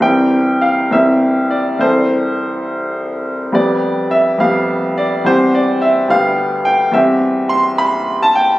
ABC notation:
X:1
M:6/8
L:1/16
Q:3/8=70
K:C
V:1 name="Upright piano"
g4 f2 e4 d2 | c12 | d4 e2 f4 d2 | c2 d2 e2 f4 g2 |
e4 c'2 b3 a g2 |]
V:2 name="Upright piano"
[C,,E,CG]6 [C,,E,CG]6 | [C,,E,CA]12 | [F,,G,B,G]6 [F,,G,B,G]6 | [E,,G,CG]6 [D,,G,B,G]6 |
[E,,G,CG]12 |]